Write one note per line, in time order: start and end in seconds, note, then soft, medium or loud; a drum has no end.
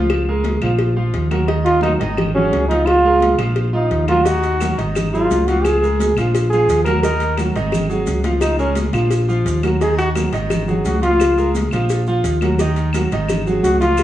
0.00 0.56 C#2 loud
0.00 0.21 F3 medium
0.00 0.21 F4 loud
0.00 0.21 F5 medium
0.10 cowbell loud
0.10 high conga soft
0.10 claves medium
0.27 0.56 G#3 medium
0.27 0.56 G#4 medium
0.27 0.56 A#4 medium
0.27 high conga soft
0.44 cowbell medium
0.44 high conga medium
0.62 1.10 A#1 loud
0.62 0.90 F3 medium
0.62 0.91 F4 medium
0.62 0.91 F5 medium
0.62 cowbell medium
0.62 high conga soft
0.62 claves medium
0.79 cowbell loud
0.79 high conga soft
0.96 1.25 F3 loud
0.96 1.25 F4 medium
0.96 1.25 F5 medium
0.96 high conga soft
1.14 1.95 D#2 medium
1.14 cowbell medium
1.14 high conga soft
1.30 1.45 F#3 medium
1.30 1.45 F#4 medium
1.30 1.45 A#4 medium
1.30 cowbell medium
1.30 high conga medium
1.30 claves medium
1.48 1.76 D#3 medium
1.48 1.76 D#4 medium
1.48 1.77 D#5 medium
1.48 cowbell loud
1.48 high conga soft
1.64 1.81 F4 loud
1.64 cowbell medium
1.64 high conga soft
1.81 1.96 F#3 medium
1.81 1.93 D#4 medium
1.81 1.97 F#4 medium
1.81 1.97 A#4 medium
1.81 cowbell medium
1.81 high conga loud
1.81 claves medium
1.99 2.49 G#1 loud
1.99 2.28 D#3 medium
1.99 2.29 D#4 medium
1.99 2.29 D#5 medium
1.99 cowbell medium
1.99 high conga soft
2.17 cowbell loud
2.17 high conga soft
2.17 low conga medium
2.17 claves medium
2.34 2.63 F#3 medium
2.34 2.67 C#4 loud
2.34 2.63 F#4 medium
2.34 2.63 G#4 medium
2.34 high conga soft
2.34 low conga medium
2.51 3.33 C#2 loud
2.51 cowbell medium
2.51 high conga medium
2.68 2.98 F3 medium
2.68 2.87 D#4 loud
2.68 2.98 F4 medium
2.68 2.98 F5 medium
2.68 cowbell medium
2.68 high conga medium
2.86 3.38 F4 loud
2.86 cowbell loud
2.86 high conga soft
2.86 claves medium
3.04 3.33 G#3 medium
3.04 3.33 G#4 medium
3.04 3.33 A#4 medium
3.04 high conga soft
3.20 cowbell medium
3.20 high conga medium
3.38 3.87 A#1 medium
3.38 3.67 F3 medium
3.38 3.67 F4 medium
3.38 3.67 F5 medium
3.38 cowbell medium
3.38 high conga soft
3.38 claves medium
3.56 cowbell medium
3.56 high conga soft
3.73 4.02 F3 medium
3.73 4.06 D#4 medium
3.73 4.02 F4 medium
3.73 4.02 F5 medium
3.73 high conga soft
3.91 4.72 D#2 loud
3.91 cowbell medium
3.91 high conga soft
4.08 4.22 F#3 medium
4.08 4.27 F4 loud
4.08 4.22 F#4 medium
4.08 4.23 A#4 medium
4.08 cowbell medium
4.08 high conga medium
4.08 claves medium
4.25 4.54 D#3 medium
4.25 4.54 D#4 medium
4.25 4.78 F#4 loud
4.25 4.54 D#5 medium
4.25 cowbell loud
4.25 high conga soft
4.25 maracas medium
4.43 cowbell medium
4.43 high conga soft
4.43 maracas soft
4.60 4.75 F#3 medium
4.60 4.75 F#4 medium
4.60 4.75 A#4 medium
4.60 cowbell medium
4.60 high conga loud
4.60 claves medium
4.60 maracas medium
4.78 5.26 G#1 loud
4.78 5.06 D#3 medium
4.78 5.06 D#4 medium
4.78 5.06 D#5 medium
4.78 cowbell medium
4.78 high conga soft
4.78 maracas soft
4.95 cowbell loud
4.95 high conga soft
4.95 low conga medium
4.95 claves medium
4.95 maracas medium
5.13 5.41 F#3 medium
5.13 5.41 D#4 medium
5.13 5.48 F4 medium
5.13 5.42 G#4 medium
5.13 high conga soft
5.13 maracas soft
5.30 6.11 C#2 loud
5.30 cowbell medium
5.30 high conga medium
5.30 maracas medium
5.46 5.76 F3 medium
5.46 5.77 F4 medium
5.46 5.66 F#4 medium
5.46 5.77 F5 medium
5.46 cowbell medium
5.46 high conga medium
5.46 maracas soft
5.64 6.17 G#4 medium
5.64 cowbell loud
5.64 high conga soft
5.64 claves medium
5.64 maracas medium
5.82 6.10 G#3 medium
5.82 6.11 G#4 medium
5.82 6.11 A#4 medium
5.82 high conga soft
5.82 maracas soft
6.00 cowbell medium
6.00 high conga loud
6.00 maracas medium
6.16 6.65 A#1 loud
6.16 6.46 F3 medium
6.16 6.46 F4 medium
6.16 6.46 F5 medium
6.16 cowbell medium
6.16 high conga soft
6.16 claves medium
6.16 maracas soft
6.34 cowbell loud
6.34 high conga soft
6.34 maracas medium
6.50 6.81 F3 medium
6.50 6.80 F4 medium
6.50 6.83 G#4 loud
6.50 6.81 F5 loud
6.50 high conga soft
6.50 maracas soft
6.68 7.49 D#2 medium
6.68 cowbell medium
6.68 high conga soft
6.68 maracas medium
6.85 7.01 F#3 medium
6.85 7.01 F#4 medium
6.85 7.01 A#4 loud
6.85 7.01 A#4 medium
6.85 cowbell medium
6.85 high conga medium
6.85 claves medium
6.85 maracas soft
7.03 7.32 D#3 medium
7.03 7.32 D#4 medium
7.03 7.51 A#4 loud
7.03 7.32 D#5 medium
7.03 cowbell loud
7.03 high conga soft
7.03 maracas medium
7.20 cowbell medium
7.20 high conga soft
7.20 maracas soft
7.37 7.52 F#3 medium
7.37 7.52 F#4 medium
7.37 7.52 A#4 medium
7.37 cowbell medium
7.37 high conga medium
7.37 claves medium
7.37 maracas medium
7.55 8.04 G#1 loud
7.55 7.84 D#3 medium
7.55 7.84 D#4 medium
7.55 7.84 D#5 medium
7.55 cowbell medium
7.55 maracas soft
7.72 cowbell medium
7.72 high conga soft
7.72 low conga medium
7.72 claves medium
7.72 maracas medium
7.89 8.18 F#3 medium
7.89 8.19 F#4 medium
7.89 8.18 G#4 medium
7.89 high conga soft
7.89 maracas soft
8.06 8.88 C#2 loud
8.06 cowbell medium
8.06 high conga medium
8.06 maracas medium
8.24 8.53 F3 medium
8.24 8.53 F4 medium
8.24 8.53 F5 medium
8.24 cowbell medium
8.24 high conga medium
8.24 maracas soft
8.41 8.58 D#4 medium
8.41 cowbell loud
8.41 high conga soft
8.41 claves medium
8.41 maracas medium
8.59 8.88 G#3 medium
8.59 8.76 C#4 medium
8.59 8.88 G#4 medium
8.59 8.88 A#4 medium
8.59 high conga soft
8.59 maracas soft
8.76 cowbell medium
8.76 high conga loud
8.76 maracas medium
8.93 9.42 A#1 loud
8.93 9.22 F3 medium
8.93 9.22 F4 medium
8.93 9.22 F5 medium
8.93 cowbell medium
8.93 high conga soft
8.93 claves medium
8.93 maracas soft
9.11 cowbell loud
9.11 maracas medium
9.28 9.57 F3 loud
9.28 9.57 F4 medium
9.28 9.58 F5 loud
9.28 high conga soft
9.28 maracas soft
9.45 10.27 D#2 loud
9.45 cowbell medium
9.45 high conga soft
9.45 maracas medium
9.63 9.78 F#3 medium
9.63 9.78 F#4 medium
9.63 9.78 A#4 medium
9.63 cowbell medium
9.63 high conga medium
9.63 claves medium
9.63 maracas soft
9.81 10.09 D#3 medium
9.81 10.10 D#4 medium
9.81 9.98 G#4 loud
9.81 10.10 D#5 medium
9.81 cowbell loud
9.81 high conga soft
9.81 maracas medium
9.98 10.09 F#4 loud
9.98 cowbell medium
9.98 high conga soft
9.98 maracas soft
10.15 10.30 F#3 medium
10.15 10.30 F#4 medium
10.15 10.30 A#4 medium
10.15 cowbell medium
10.15 high conga loud
10.15 claves medium
10.15 maracas medium
10.32 10.81 G#1 loud
10.32 10.61 D#3 medium
10.32 10.62 D#4 medium
10.32 10.62 D#5 medium
10.32 cowbell medium
10.32 maracas soft
10.50 cowbell loud
10.50 high conga soft
10.50 low conga loud
10.50 claves medium
10.50 maracas medium
10.68 10.96 F#3 medium
10.68 10.97 F#4 medium
10.68 10.97 G#4 medium
10.68 high conga soft
10.68 low conga medium
10.68 maracas soft
10.85 11.66 C#2 loud
10.85 11.02 F#4 medium
10.85 cowbell medium
10.85 high conga medium
10.85 maracas medium
11.02 11.31 F3 medium
11.02 11.31 F4 medium
11.02 11.51 F4 loud
11.02 11.31 F5 medium
11.02 cowbell medium
11.02 high conga medium
11.02 maracas soft
11.20 cowbell loud
11.20 high conga soft
11.20 claves medium
11.20 maracas medium
11.37 11.66 G#3 medium
11.37 11.66 G#4 medium
11.37 11.66 A#4 medium
11.37 high conga soft
11.37 maracas soft
11.55 cowbell medium
11.55 high conga loud
11.55 maracas medium
11.71 12.21 A#1 loud
11.71 12.01 F3 medium
11.71 12.01 F4 medium
11.71 12.01 F5 medium
11.71 cowbell medium
11.71 high conga soft
11.71 claves medium
11.71 maracas soft
11.89 cowbell loud
11.89 maracas medium
12.07 12.36 F3 medium
12.07 12.36 F4 loud
12.07 12.36 F5 medium
12.07 high conga soft
12.07 maracas soft
12.24 13.05 D#2 loud
12.24 cowbell medium
12.24 high conga soft
12.24 maracas medium
12.41 12.56 F#3 medium
12.41 12.56 F#4 medium
12.41 12.57 A#4 medium
12.41 cowbell medium
12.41 high conga medium
12.41 claves medium
12.41 maracas soft
12.59 12.88 D#3 loud
12.59 12.88 D#4 medium
12.59 12.89 D#5 medium
12.59 cowbell loud
12.59 high conga soft
12.59 maracas medium
12.76 cowbell medium
12.76 high conga soft
12.76 maracas soft
12.93 13.09 F#3 medium
12.93 13.09 F#4 medium
12.93 13.09 A#4 medium
12.93 cowbell medium
12.93 high conga medium
12.93 claves medium
12.93 maracas medium
13.11 13.60 G#1 loud
13.11 13.41 D#3 medium
13.11 13.40 D#4 medium
13.11 13.41 D#5 medium
13.11 cowbell medium
13.11 high conga soft
13.11 maracas soft
13.29 cowbell loud
13.29 high conga soft
13.29 low conga medium
13.29 claves medium
13.29 maracas medium
13.46 13.75 F#3 medium
13.46 13.75 F#4 medium
13.46 13.75 G#4 medium
13.46 high conga soft
13.46 low conga medium
13.46 maracas soft
13.62 14.03 C#2 loud
13.62 13.79 F#4 loud
13.62 cowbell medium
13.62 high conga medium
13.62 maracas medium
13.79 14.03 F3 medium
13.79 14.03 F4 medium
13.79 14.03 F4 loud
13.79 14.03 F5 medium
13.79 cowbell medium
13.79 high conga medium
13.79 maracas soft
13.97 cowbell loud
13.97 high conga soft
13.97 claves medium
13.97 maracas medium